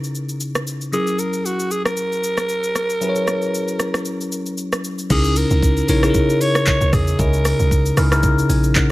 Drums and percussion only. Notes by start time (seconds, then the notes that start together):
0.04 shaker
0.15 shaker
0.29 shaker
0.40 shaker
0.55 cross-stick, shaker
0.67 shaker
0.81 shaker
0.93 shaker
1.07 shaker
1.19 shaker
1.33 shaker
1.46 shaker
1.59 shaker
1.71 shaker
1.85 cross-stick, shaker
1.97 shaker
2.12 shaker
2.23 shaker
2.37 cross-stick, shaker
2.49 shaker
2.63 shaker
2.75 cross-stick, shaker
2.90 shaker
3.01 shaker
3.16 shaker
3.27 cross-stick, shaker
3.42 shaker
3.54 shaker
3.68 shaker
3.79 cross-stick, shaker
3.94 cross-stick, shaker
4.05 shaker
4.21 shaker
4.32 shaker
4.46 shaker
4.57 shaker
4.72 cross-stick, shaker
4.84 shaker
4.98 shaker
5.10 kick, crash, shaker
5.24 shaker
5.36 open hi-hat, shaker
5.50 shaker
5.62 kick, shaker
5.77 shaker
5.88 open hi-hat, shaker
6.03 cross-stick, shaker
6.14 kick, shaker
6.30 shaker
6.41 open hi-hat, shaker
6.55 cross-stick, shaker
6.66 kick, clap, shaker
6.81 shaker
6.93 kick, cross-stick, open hi-hat, shaker
7.07 shaker
7.19 kick, shaker
7.33 shaker
7.45 cross-stick, open hi-hat, shaker
7.59 shaker
7.71 kick, shaker
7.86 shaker
7.97 cross-stick, open hi-hat, shaker
8.12 cross-stick, shaker
8.23 kick, shaker
8.38 shaker
8.50 open hi-hat, shaker
8.64 shaker
8.75 kick, clap, shaker